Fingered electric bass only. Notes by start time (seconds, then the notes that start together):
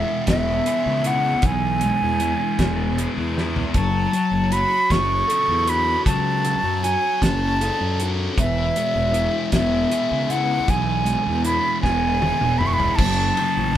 0.28 E1
0.86 C#2
1.43 B1
2.02 E2
2.59 E1
3.17 E2
3.75 F#1
4.31 F#1
4.91 F#1
5.48 E2
6.06 C#2
6.63 F#2
7.23 F#1
7.81 F#2
8.38 E1
8.96 E1
9.53 E1
10.11 C#2
10.69 B1
11.27 E2
11.83 E1
12.42 E1
12.98 F#1
13.57 A1